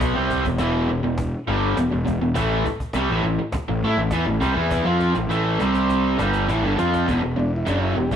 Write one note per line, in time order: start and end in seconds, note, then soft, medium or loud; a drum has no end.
0.00 0.14 B1 medium
0.00 0.15 B2 medium
0.00 0.15 F#3 loud
0.00 0.15 B3 loud
0.00 cajon bass loud
0.00 cajon slap loud
0.15 0.43 C2 medium
0.15 0.43 C3 medium
0.15 0.45 G3 medium
0.15 0.45 C4 medium
0.30 cajon bass medium
0.43 0.59 E1 medium
0.43 0.58 E2 medium
0.43 0.58 B2 medium
0.43 cajon bass medium
0.58 0.87 E1 medium
0.58 0.87 E2 medium
0.58 0.88 B2 medium
0.58 0.89 E3 loud
0.58 cajon slap loud
0.88 1.03 E1 medium
0.88 1.02 E2 medium
0.88 1.03 B2 medium
0.88 cajon slap soft
1.03 1.31 E1 medium
1.03 1.28 E2 medium
1.03 1.28 B2 medium
1.18 cajon bass loud
1.18 cajon slap loud
1.47 1.75 G1 loud
1.47 1.76 G2 medium
1.47 1.77 D3 medium
1.47 1.78 G3 medium
1.47 cajon slap soft
1.76 1.91 E1 medium
1.76 1.90 E2 medium
1.76 1.91 B2 medium
1.76 cajon slap loud
1.91 2.06 E1 medium
1.91 2.04 E2 medium
1.91 2.04 B2 medium
2.05 2.20 E1 medium
2.05 2.21 E2 medium
2.05 2.20 B2 medium
2.05 cajon bass medium
2.20 2.35 E1 medium
2.20 2.37 E2 medium
2.20 2.34 B2 medium
2.35 2.64 A1 medium
2.35 2.65 A2 loud
2.35 2.65 E3 loud
2.35 2.65 A3 loud
2.35 cajon bass loud
2.35 cajon slap loud
2.66 muted overdriven electric guitar stroke medium
2.66 muted picked electric bass stroke soft
2.66 cajon bass medium
2.80 cajon bass medium
2.93 3.09 C2 loud
2.93 3.09 C3 medium
2.93 3.10 G3 loud
2.93 cajon slap loud
3.10 3.22 A1 loud
3.10 3.24 A2 medium
3.10 3.24 E3 loud
3.23 3.38 A1 medium
3.23 3.38 A2 medium
3.23 3.40 E3 medium
3.23 cajon slap soft
3.39 muted overdriven electric guitar stroke medium
3.39 muted picked electric bass stroke soft
3.52 muted picked electric bass stroke soft
3.52 muted overdriven electric guitar stroke medium
3.52 cajon bass loud
3.52 cajon slap loud
3.68 3.82 A1 medium
3.68 3.84 A2 medium
3.68 3.84 E3 medium
3.83 3.96 A2 medium
3.83 3.98 A3 medium
3.83 3.99 E4 loud
3.83 cajon slap soft
3.97 4.11 A1 medium
3.97 4.12 A2 medium
3.97 4.12 E3 medium
4.11 4.25 E2 loud
4.11 4.26 E3 loud
4.11 4.27 B3 loud
4.11 cajon slap loud
4.26 4.41 A1 medium
4.26 4.40 A2 medium
4.26 4.41 E3 medium
4.41 4.56 C2 medium
4.41 4.54 C3 medium
4.41 4.55 G3 loud
4.41 cajon bass medium
4.54 4.83 E2 loud
4.54 4.85 E3 medium
4.54 4.85 B3 loud
4.54 4.85 E4 loud
4.70 cajon bass loud
4.70 cajon slap medium
4.84 5.13 F2 medium
4.84 5.14 F3 loud
4.84 5.14 C4 medium
4.84 5.15 F4 loud
5.00 cajon slap medium
5.00 cajon slap soft
5.15 5.27 A1 medium
5.15 5.28 A2 medium
5.15 5.29 E3 medium
5.15 cajon slap medium
5.28 5.57 A1 medium
5.28 5.59 A2 medium
5.28 5.59 E3 medium
5.28 5.59 A3 loud
5.28 cajon slap medium
5.60 6.15 C2 medium
5.60 6.18 C3 medium
5.60 6.18 G3 loud
5.60 6.19 C4 loud
5.60 cajon slap medium
5.75 cajon slap medium
5.90 cajon slap medium
6.18 6.46 G1 medium
6.18 6.47 G2 medium
6.18 6.47 D3 medium
6.18 6.48 G3 loud
6.18 cajon slap loud
6.33 cajon slap medium
6.48 6.62 A1 medium
6.48 6.62 A2 medium
6.48 6.63 E3 loud
6.48 cajon slap loud
6.48 cajon slap medium
6.62 6.77 G1 medium
6.62 6.77 G2 medium
6.62 6.75 D3 loud
6.76 7.06 F2 medium
6.76 7.06 F3 medium
6.76 7.06 C4 loud
6.76 7.07 F4 loud
6.76 cajon slap loud
6.94 cajon slap medium
7.07 7.22 E1 medium
7.07 7.20 E2 medium
7.07 7.21 B2 loud
7.07 cajon bass loud
7.21 7.35 E1 medium
7.21 7.35 E2 medium
7.21 7.36 B2 medium
7.36 7.64 E1 medium
7.36 7.60 E2 medium
7.36 7.61 B2 medium
7.36 7.39 C#4 medium
7.36 7.52 D4 medium
7.56 7.68 E4 medium
7.66 7.94 F#1 medium
7.66 7.95 F#2 medium
7.66 7.95 C#3 medium
7.66 7.95 F#3 loud
7.66 7.81 D4 medium
7.66 cajon slap loud
7.83 7.96 E4 medium
7.96 8.10 E1 medium
7.96 8.10 E2 medium
7.96 8.11 B2 medium
7.96 8.11 G4 medium
8.11 8.16 E1 medium
8.11 8.16 E2 medium
8.11 8.16 B2 loud
8.11 8.16 E4 medium
8.11 cajon bass loud